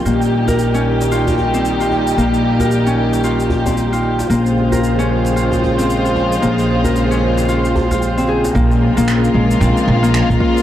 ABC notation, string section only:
X:1
M:4/4
L:1/8
Q:"Swing 16ths" 1/4=113
K:Dblyd
V:1 name="String section" clef=bass
[B,,E,G,EG]8- | [B,,E,G,EG]8 | [D,F,A,Fc]8- | [D,F,A,Fc]8 |
[D,F,A,B,F]8 |]